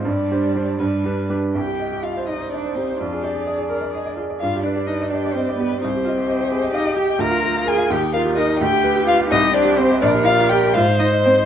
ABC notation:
X:1
M:6/8
L:1/16
Q:3/8=85
K:Cm
V:1 name="Violin"
d6 =B4 z2 | g4 f2 e2 d2 c2 | d8- d2 z2 | f2 d2 e2 d2 c2 =B2 |
c8 e2 g2 | b4 a2 g2 f2 e2 | g4 f2 e2 d2 c2 | d2 f2 g2 f2 e2 c2 |]
V:2 name="Grand piano"
G,,2 [DGc]2 [DGc]2 G,,2 [DG=B]2 [DGB]2 | C,, G e G e c d c d c G c | F,, A d A d A B d e d A d | G,, G =B G B d e d e d G d |
C,, G e G e G A e f e G e | D,, F B F B f E,, G B G B e | D,, G =B G B f C,, G c G c e | B,,, G d G d B A,, E c E c E |]
V:3 name="Viola"
D6 D4 z2 | z6 E6 | F2 G2 A2 B2 A2 F2 | D6 G6 |
E2 F2 G8 | F6 E6 | G12 | B6 c6 |]
V:4 name="Cello"
G,6 G,4 z2 | G4 F2 E2 D2 C2 | D8- D2 z2 | F2 D2 E2 D2 C2 =B,2 |
C8 E2 G2 | B4 A2 G2 F2 E2 | G4 F2 E2 D2 C2 | D2 F2 G2 F2 E2 C2 |]